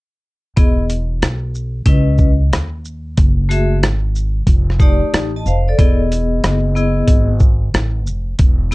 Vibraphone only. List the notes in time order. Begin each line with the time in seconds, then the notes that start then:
0.56 B3 E4 G#4 D#5
1.86 C#4 E4 B4 D#5
3.49 A3 F#4 G#4 E5
4.79 A3 D#4 G4 D5
5.36 D#5 A5
5.47 C5 F5
5.68 A4 D5
5.78 B3 E4 G#4 D#5
6.75 B3 E4 G#4 D#5
8.71 B3